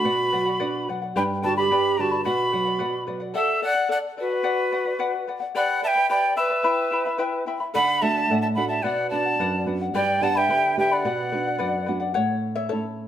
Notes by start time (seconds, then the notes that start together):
Already playing: F#4 B5
0.04 B2 B4 D5 F#5
0.32 F#3 B4 D5 F#5
0.46 D5 F#5
0.60 D4 B4 D5 F#5
0.88 F#3 B4 D5 F#5
1.02 D5 F#5
1.16 G2 D4 G4 B4 D5 G5 B5
1.42 D3 F#4 B4 D5 G5 A5 B5
1.57 G4 B4 D5 B5
1.71 G3 G4 B4 D5 G5 B5
1.97 D3 F#4 B4 D5 G5 A5 A#5 B5
2.11 B4 D5 B5
2.24 B2 F#4 B4 D5 F#5 B5
2.51 F#3 B4 D5 F#5
2.65 D5 F#5
2.79 B3 B4 D5 F#5
3.07 F#3 B4 D5 F#5
3.20 D5 F#5
3.34 A4 D5 E5 F#5
3.61 A4 D5 F#5
3.75 D5 F#5
3.89 A4 D5 F#5
4.17 F#4 A4 B4 D5 F#5
4.30 D5 F#5
4.43 B4 D5 F#5
4.71 B4 D5 F#5
4.85 D5 F#5
4.99 B4 D5 F#5
5.27 B4 D5 F#5
5.40 D5 F#5
5.55 G4 B4 D5 F#5 G5 B5
5.82 B4 D5 E5 G5 A5 B5
5.87 G5
5.95 B4 D5 B5
6.09 G4 B4 D5 G5 B5
6.36 B4 D5 E5 G5 B5
6.50 B4 D5 B5
6.63 E4 B4 E5 G5 B5
6.92 E4 E5 G5 B5
7.05 E4 E5 B5
7.18 E4 B4 E5 G5 B5
7.46 E4 E5 G5 B5
7.60 E4 E5 B5
7.74 D3 A4 D5 F#5 B5
8.01 A3 D4 F#4 A4 D5 E5 F#5 A5
8.15 D5 F#5
8.30 A2 A4 D5 F#5
8.41 E5 A5
8.55 A3 D4 F#4 A4 D5 F#5 B5
8.68 D5 E5 F#5 A5
8.82 B2 B4 D5 F#5
9.09 B3 D4 F#4 B4 D5 F#5 A5
9.25 D5 F#5
9.39 F#2 B4 D5 F#5
9.65 B3 D4 F#4 B4 D5 F#5
9.81 D5 F#5
9.93 G2 G4 B4 D5 G5 B5
10.21 B3 D4 G4 B4 D5 F#5 G5 A5 B5
10.35 B4 D5 E5 G5 B5
10.49 D3 G4 B4 D5 G5 B5
10.77 B3 D4 G4 B4 D5 E5 G5 B5
10.91 B4 D5 F#5 B5
11.05 B2 B4 D5 F#5
11.32 B3 D4 F#4 B4 D5 F#5
11.46 D5 F#5
11.58 F#2 B4 D5 F#5
11.86 B3 D4 F#4 B4 D5 F#5
12.00 D5 F#5
12.14 A2 C#5 F#5
12.56 C#5 E5
12.69 A3 C#4 E4 A4 C#5